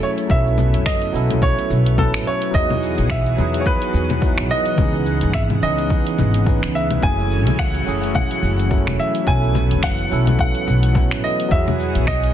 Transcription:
Already playing: tine electric piano F#3 A3 C#4 E4 G#4 A4, analog synth pad F#3 A3 C#4 E4 G#5
0.02 grand piano C#5, shaker
0.18 closed hi-hat, shaker
0.27 upright bass B1, tine electric piano F#3 B3 C#4, analog synth pad A3 B3, grand piano E5, kick, shaker
0.32 tine electric piano E4 A4
0.47 shaker
0.58 low conga, shaker
0.74 upright bass F#1, closed hi-hat, shaker
0.86 grand piano D#5, finger snap, kick, shaker
1.02 closed hi-hat, shaker
1.12 upright bass B1, tine electric piano F#3 B3 C#4 E4 A4, shaker
1.31 closed hi-hat, low conga, shaker
1.42 grand piano C#5, kick, shaker
1.59 closed hi-hat, shaker
1.70 upright bass B1, shaker
1.86 closed hi-hat, shaker
1.97 tine electric piano F#3 B3 C#4 E4 B4, grand piano A4, kick, low conga, shaker
2.14 upright bass A1, finger snap, closed hi-hat, shaker
2.27 grand piano C#5, shaker
2.42 closed hi-hat, shaker
2.51 upright bass E2, analog synth pad E3 F#4 G#4 F#5, tine electric piano F#3 B3 D#4, grand piano D#5, kick, shaker
2.56 tine electric piano E4 G#4
2.70 low conga, shaker
2.83 shaker
2.98 upright bass B1, closed hi-hat, shaker
3.10 grand piano E5, finger snap, kick, shaker
3.26 closed hi-hat, shaker
3.37 upright bass E2, tine electric piano F#3 B3 D#4 E4 G#4, low conga, shaker
3.54 closed hi-hat, shaker
3.60 grand piano C#5
3.66 grand piano B4, kick, shaker
3.82 closed hi-hat, shaker
3.94 upright bass E2, shaker
4.10 closed hi-hat, low conga, shaker
4.21 tine electric piano F#3 B3 D#4 E4 B4, kick, shaker
4.38 upright bass B1, finger snap, closed hi-hat
4.50 grand piano D#5, shaker
4.66 closed hi-hat, shaker
4.75 upright bass C#2, analog synth pad C#3 E3 G#3, tine electric piano E3 B3 C#4, kick, low conga, shaker
4.81 tine electric piano D#4 G#4
4.94 shaker
5.06 shaker
5.21 upright bass G#1, closed hi-hat, shaker
5.33 grand piano E5, finger snap, kick, shaker
5.50 closed hi-hat, low conga, shaker
5.60 upright bass C#2, tine electric piano E3 B3 C#4 D#4 G#4, grand piano D#5, shaker
5.78 closed hi-hat, shaker
5.90 kick, shaker
6.07 closed hi-hat, shaker
6.18 upright bass G#1, low conga, shaker
6.34 closed hi-hat, shaker
6.45 tine electric piano E3 B3 C#4 D#4 B4, kick, shaker
6.63 upright bass C#2, finger snap, closed hi-hat, shaker
6.75 grand piano E5, shaker
6.90 closed hi-hat, low conga, shaker
7.00 upright bass F#1, tine electric piano F#3 A3 C#4, analog synth pad F#3 A3 C#4 G#5, grand piano G#5, kick, shaker
7.05 tine electric piano E4 G#4
7.19 shaker
7.31 shaker
7.47 upright bass C#2, closed hi-hat, low conga, shaker
7.59 grand piano F#5, finger snap, kick, shaker
7.75 closed hi-hat, shaker
7.85 upright bass F#1, tine electric piano F#3 A3 C#4 E4 G#4, shaker
8.03 closed hi-hat, shaker
8.15 grand piano F#5, kick, low conga, shaker
8.31 closed hi-hat, shaker
8.42 upright bass F#1, shaker
8.59 closed hi-hat, shaker
8.69 tine electric piano F#3 A3 C#4 E4 A4, kick, shaker
8.87 upright bass E1, finger snap, closed hi-hat, low conga
9.00 grand piano E5, shaker
9.15 closed hi-hat, shaker
9.24 upright bass B1, tine electric piano F#3 B3 C#4, analog synth pad A3 B3, grand piano G#5, kick, shaker
9.29 tine electric piano E4 A4
9.43 shaker
9.55 low conga, shaker
9.71 upright bass F#1, closed hi-hat, shaker
9.83 grand piano F#5, finger snap, kick, shaker
9.98 closed hi-hat, shaker
10.10 upright bass B1, tine electric piano F#3 B3 C#4 E4 A4, shaker
10.27 closed hi-hat, low conga, shaker
10.39 grand piano F#5, kick, shaker
10.55 closed hi-hat, shaker
10.67 upright bass B1, shaker
10.83 closed hi-hat, shaker
10.93 tine electric piano F#3 B3 C#4 E4 B4, kick, low conga, shaker
11.11 upright bass A1, finger snap, closed hi-hat, shaker
11.24 grand piano D#5, shaker
11.40 closed hi-hat, shaker
11.48 upright bass E2, analog synth pad E3 F#4 G#4 F#5, tine electric piano F#3 B3 F#4, grand piano E5, kick
11.52 tine electric piano E4 G#4, shaker
11.68 low conga, shaker
11.80 shaker
11.95 upright bass B1, closed hi-hat, shaker
12.07 grand piano D#5, finger snap, kick, shaker
12.24 closed hi-hat, shaker

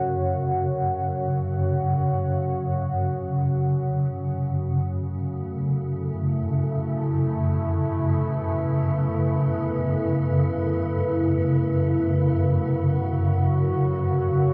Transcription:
Already playing: synth drone F#2 C#3, ambient pad F#4 C#5 F#5
4.04 ambient pad A3
5.20 ambient pad E4
7.59 ambient pad B4
11.91 ambient pad F#4
12.60 ambient pad F#5
12.66 ambient pad C#5

